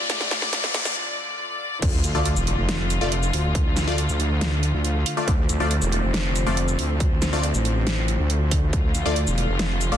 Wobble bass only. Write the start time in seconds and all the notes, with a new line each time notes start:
1.82 D2
2.04 D2
2.15 D2
2.36 E1
2.58 F1
3.01 F1
3.33 D2
3.66 D2
4.09 D2
4.74 D2
5.28 D2
5.49 D2
5.60 D2
5.82 E1
6.03 F1
6.47 F1
6.79 D2
7.11 D2
7.54 A1
8.19 D2
8.73 D2
8.95 D2
9.06 D2
9.27 E1
9.49 F1
9.92 F1